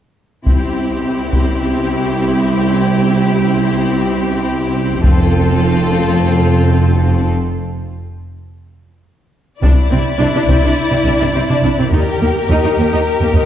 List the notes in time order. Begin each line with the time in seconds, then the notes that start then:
0.45 C2 C4 E4 G4, taiko
1.33 taiko
5.03 F1 F2 C4 F4 A4, taiko
9.60 C2 C3 D4 E4 D5, taiko
9.91 C2 C3 C4
10.19 C2 C3 D4
10.35 C3 D4
10.48 C2 C3 C4, taiko
10.62 C3 D4
10.90 C3 C4
11.05 C2 C3 D4
11.19 C3 D4
11.34 C2 C3 C4
11.49 C3 D4
11.62 C2 C3 D4
11.79 C3 C4
11.92 D#2 D#4 G4 A#4
12.20 D#2 A#3
12.48 D#2 D#4
12.63 D#2 D#4
12.78 D#2 A#3
12.93 D#2 D#4
13.21 D#2 A#3
13.34 D#2 D#4